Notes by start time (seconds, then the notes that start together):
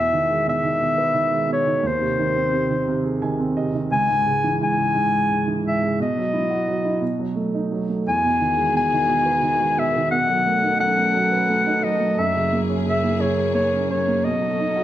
Already playing: E2 B2 E5
0.13 D#3
0.30 G#3
0.47 B2 E5
0.64 D#3
0.81 B2
0.98 B4
1.14 D#3
1.32 G#3
1.49 B2 C#5
1.67 D#3
1.83 D#2
1.87 C5
2.01 C3
2.19 D#3
2.36 C4
2.53 C3
2.70 D#3
2.88 C3
3.04 G#4
3.22 D#3 G#5
3.39 C4
3.57 C3 D#5
3.74 D#3
3.91 C#2 G#5
4.09 G#2
4.26 C#3
4.44 E3
4.61 G#2 G#5
4.77 C#3
4.94 G#2
5.12 G#4
5.30 C#3
5.48 E3
5.65 G#2 E5
5.82 C#3
6.00 B2 D#5
6.17 F#3
6.33 E4
6.51 F#4
6.68 F#3
6.85 E4
7.01 B2
7.19 F#3
7.35 A3
7.54 D#4
7.72 F#3
7.89 A3
8.06 E2 B2 D#3 F#4 G#4 G#5
8.24 B2
8.40 D#3
8.57 G#3
8.74 B2 G#5
8.93 D#3
9.09 B2
9.26 B4
9.42 D#3
9.60 G#3
9.77 B2 E5
9.96 D#3
10.11 B2 F#3 C#4 A4 F#5
10.29 F#3
10.47 A3
10.63 D#4
10.80 F#3 F#5
10.98 A3
11.14 F#3
11.32 B4
11.49 A3
11.67 D#4
11.84 F#3 D#5
12.01 A3
12.18 F#2 A#3 E4 G#4 E5
12.35 C#3
12.52 A#3
12.69 C#4
12.86 C#3 E5
13.03 A#3
13.20 C#3 C#5
13.36 A#4
13.54 A#3 C#5
13.72 C#4
13.90 C#3 C#5
14.08 A#3
14.24 B2 C#4 D#4 A4 D#5
14.41 F#3
14.59 D#4
14.76 F#4